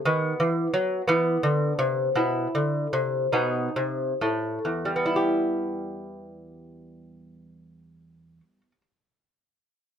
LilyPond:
\new Staff \with { instrumentName = "Lute" } { \clef bass \time 6/8 \key e \minor \tempo 4. = 45 << { b4. b4. | e'4. dis'4. | <e, g b e' g'>2.~ | <e, g b e' g'>2. | } \\ { dis8 e8 fis8 e8 d8 c8 | b,8 d8 c8 b,8 c8 a,8 | r2. | r2. | } >> }